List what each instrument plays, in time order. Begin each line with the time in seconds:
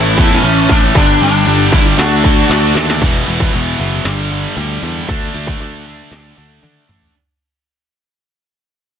Already playing: picked electric bass A1, overdriven electric guitar A2 E3 A3, distorted electric guitar A2 E3 A3, lead electric guitar E4, tonewheel organ E4 C#5 A5
0.17 picked electric bass E2, overdriven electric guitar A2 E3 A3, kick
0.34 lead electric guitar C#4
0.42 picked electric bass A1, distorted electric guitar A2 E3 A3, open hi-hat
0.69 picked electric bass A1, distorted electric guitar A2 E3 A3, lead electric guitar D4, kick
0.94 picked electric bass G1, distorted electric guitar G2 D3 G3, lead electric guitar D4, tonewheel organ G4 D5 B5, kick, open hi-hat
1.20 picked electric bass G1, lead electric guitar D4
1.46 picked electric bass G1, distorted electric guitar G2 D3 G3, open hi-hat
1.72 picked electric bass G1, distorted electric guitar G2 D3 G3, lead electric guitar E4, kick
1.97 picked electric bass D2, distorted electric guitar D3 A3 D4, tonewheel organ F#4 A5, lead electric guitar F#4, snare, open hi-hat
2.24 kick
2.49 picked electric bass D2, distorted electric guitar D3 A3 D4, snare, open hi-hat
2.75 picked electric bass D#2, distorted electric guitar D3 A3 D4, snare
2.90 snare
3.01 picked electric bass E1, distorted electric guitar E2 B2 E3, kick, crash, ride
3.27 picked electric bass E1, distorted electric guitar E2 B2 E3, ride
3.40 kick
3.53 picked electric bass E1, distorted electric guitar E2 B2 E3, ride
3.78 picked electric bass F#1, distorted electric guitar E2 B2 E3, ride
4.04 picked electric bass G1, distorted electric guitar G2 D3 G3, snare, ride
4.30 distorted electric guitar G2 D3 G3, ride
4.56 picked electric bass D2, distorted electric guitar G2 D3 G3, ride
4.83 picked electric bass E2, distorted electric guitar G2 D3 G3, ride
5.08 picked electric bass D2, distorted electric guitar D3 A3 D4, kick, ride
5.33 picked electric bass D2, distorted electric guitar D3 A3 D4, ride
5.47 kick
5.60 picked electric bass D2, distorted electric guitar D3 A3 D4, ride
5.86 distorted electric guitar D3 A3 D4, ride
6.11 picked electric bass D2, distorted electric guitar D3 A3 D4, snare, ride
6.36 picked electric bass D2, distorted electric guitar D3 A3 D4, ride
6.63 distorted electric guitar D3 A3 D4, picked electric bass D3, high tom, ride
6.88 picked electric bass A1, distorted electric guitar D3 A3 D4, mid tom, ride
7.02 floor tom